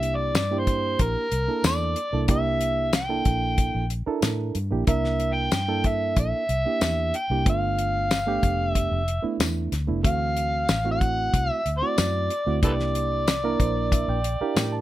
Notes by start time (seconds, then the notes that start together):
Already playing: C2 A#3 D4 E4 G4 E5
0.03 closed hi-hat
0.16 D5
0.34 G2, snare, closed hi-hat, tambourine
0.51 A#3 D4 E4 G4
0.59 C5
0.67 kick, closed hi-hat
0.99 A#1 A#4, kick, closed hi-hat
1.32 C2, closed hi-hat
1.48 A#3 D4 E4 A4
1.64 E2 D5, snare, closed hi-hat, tambourine
1.96 closed hi-hat
2.13 C2 A#3 D4 E4 A4
2.28 A#3 D4 E4 G4 E5, kick, closed hi-hat
2.61 closed hi-hat
2.93 G5, snare, closed hi-hat, tambourine
3.09 A#3 D4 E4 A4
3.25 A#1, kick, closed hi-hat
3.58 kick, closed hi-hat
3.75 A#1
3.90 closed hi-hat
4.06 D4 E4 A4 A#4, muted fingered electric bass stroke
4.22 A2, snare, closed hi-hat, tambourine
4.55 G2, closed hi-hat
4.71 A#1 A#3 D4 E4 G4
4.87 C2 A#3 D4 E4 A#4 E5, kick, closed hi-hat
5.04 snare
5.20 closed hi-hat
5.33 G5
5.52 G2, snare, closed hi-hat, tambourine
5.68 A#3 D4 E4 A4
5.84 E5, kick, closed hi-hat
6.17 A#1 E5, kick, closed hi-hat
6.49 C2, closed hi-hat
6.65 A#3 D4 E4 G4
6.81 E2, snare, closed hi-hat, tambourine
7.14 G5, closed hi-hat
7.30 C2 A#3 D4 E4 G4
7.45 G1 A3 B3 D4 F4, kick, closed hi-hat
7.50 F5
7.79 closed hi-hat
8.11 snare, closed hi-hat, tambourine
8.27 A3 B3 D4 G4
8.43 F1, kick, closed hi-hat
8.70 E5
8.75 kick, closed hi-hat
8.91 F1
9.08 closed hi-hat
9.22 A3 B3 D4 E4
9.40 E2, snare, closed hi-hat, tambourine
9.72 D2, snare, closed hi-hat
9.87 F1 A3 B3 D4 E4
10.03 D2 E3 A3 C4 F#4 F5, kick, closed hi-hat
10.37 closed hi-hat
10.69 A1, snare, closed hi-hat, tambourine
10.84 A3 C4 E4 F#4
10.92 F#5
11.01 kick, closed hi-hat
11.34 C2, kick, closed hi-hat
11.51 E5
11.66 D2, closed hi-hat
11.78 A3 C4 E4 D5
11.83 F#4
11.98 F#2, snare, closed hi-hat, tambourine
12.30 closed hi-hat
12.46 D2 A3 C4 E4 F#4
12.62 C2 A#3 D4 E4 G4 A4 B4 D5, kick, closed hi-hat
12.80 snare
12.95 closed hi-hat
13.28 snare, closed hi-hat, tambourine
13.44 A#3 D4 E4 A#4
13.60 A#1 C5, kick, closed hi-hat
13.77 D5
13.92 E5, kick, closed hi-hat
14.08 A#1 G5
14.24 closed hi-hat
14.41 D4 E4 G4 A#4 F5, muted fingered electric bass stroke
14.56 A2 G5, snare, closed hi-hat, tambourine
14.72 A5